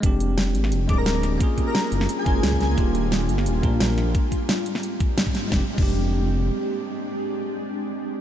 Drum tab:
CC |----------------|----------------|----------------|----------------|
HH |x-x-x-x-x-x-x-x-|x-x-x-x-x-x-x-x-|x-x-x-x-x-x-x-x-|x-x-x-x-x-x-x-x-|
SD |----o--o----o-o-|----o--o----o-o-|----o--o----o-o-|----o--o----o-o-|
BD |o---------o-----|o-o-------o--o--|o---------o-----|o-o-------o--o--|

CC |---x------------|----------------|
HH |----------------|----------------|
SD |o---------------|----------------|
BD |o--o------------|----------------|